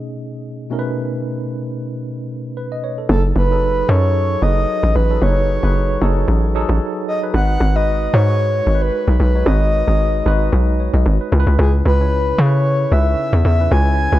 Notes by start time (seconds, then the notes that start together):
Already playing: B2 A3 C#4 D#4 G#4 D#5
0.70 B2 A3 C#4 D#4 A#4
0.79 B4
2.57 B4
2.72 D#5
2.84 C#5
2.98 A4
3.09 F#1 F#3 D#4 G#4 A4
3.36 F#1 B4
3.51 F#3 D#4 G#4 A4
3.89 F#2 F#3 D#4 G#4 A4 C#5
4.42 F#1 F#3 D#4 G#4 B4 D#5
4.83 A1
4.95 A1 B4
5.10 F#3 D#4 G#4 A4
5.22 F#1 F#3 D#4 G#4 B4 C#5
5.63 F#1 F#3 D#4 G#4 B4
6.02 F#1 F#3 D#4 G#4 A4
6.28 A1
6.55 F#3 D#4 G#4 A4
6.69 A1
7.08 D#5
7.22 F#3 D#4 G#4 B4
7.34 G#1 G#3 D#4 F#4 B4 F#5
7.60 G#1
7.75 G#3 D#4 F#4 B4 D#5
8.14 G#2 G#3 D#4 F#4 G#4 C#5
8.67 G#1 G#3 D#4 F#4 A#4
8.75 B4
8.82 B4
9.08 B1
9.20 B1 B4
9.35 G#3 D#4 F#4 C#5
9.46 G#1 G#3 D#4 F#4 B4 D#5
9.88 G#1 G#3 D#4 F#4 G#4
10.26 G#1 G#3 D#4 F#4 B4
10.53 B1
10.80 C#5
10.94 B1 D#5
11.06 G#1
11.21 B4
11.32 C#2 C#3 C#4 E4 A#4
11.40 B4
11.47 C#2
11.59 C#2 G#4
11.85 C#2 B4
12.00 C#3 C#4 E4 C#5
12.38 C#3 C#4 E4 A4 C#5
12.46 B4
12.92 C#2 C#3 C#4 D#4 B4 E5
12.99 E4
13.33 E2
13.45 E2 E5
13.59 C#3 C#4 E4 B4
13.71 C#2 C#3 C#4 E4 C#5 G#5
14.12 C#2 C#3 C#4 E4 B4